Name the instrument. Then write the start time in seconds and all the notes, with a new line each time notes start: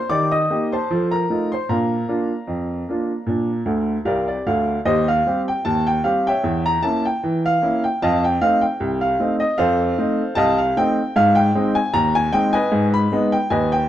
upright piano
0.10 D#3 G4 D5 D6
0.31 D#5 D#6
0.50 A#3 D#4 G4
0.72 C5 A5 C6
0.91 F3 A4
1.11 A#4 A#5
1.30 A3 D#4 F4
1.52 C5 C6
1.69 A#2 D4 A#4 F5 A#5
2.08 A#3 D4 F4
2.48 F2
2.89 A#3 D4 F4
3.26 A#2 D4
3.66 D2 D3
4.05 C2 C3 A#4 D5 F5
4.28 D5
4.47 D2 D3 F5
4.85 D#2 G4 C5 D#5
5.08 F5
5.26 G3 C4 G4
5.48 G5
5.65 D#2 A5
5.87 G5
6.04 G3 C4 G4 F5
6.27 C#5 E5 G5
6.44 E2
6.66 A#5
6.83 A#3 C#4 E4 A5
7.05 G5
7.23 E3
7.46 F5
7.62 A#3 C#4 E4
7.84 G5
8.02 F2 D#5 F5 A5
8.24 G5
8.41 A3 C4 D#4 F5
8.61 G5
8.80 C2
9.01 F5
9.20 A3 C4 D#4
9.40 D#5
9.58 F2 A4 C5 F5
9.98 A3 C4 D#4
10.35 C2 D#5 F5 A5
10.58 F5
10.77 A3 C4 D#4 G5
11.16 G#2 F5
11.35 G5
11.55 G#3 C4 D#4
11.75 G#5
11.94 D#2 A#5
12.15 G#5
12.33 G#3 C4 D#4 G5
12.53 B4 D#5 G#5
12.72 G#2
12.94 B5
13.12 G#3 B3 D#4
13.32 G5
13.50 D#2 B4 D#5 G#5
13.72 G5